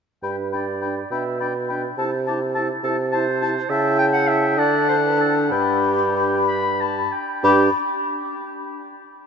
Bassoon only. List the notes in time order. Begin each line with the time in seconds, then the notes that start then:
0.23 G2
1.11 B2
1.98 C3
2.83 C3
3.69 C#3
4.58 D3
5.52 G2
7.43 G2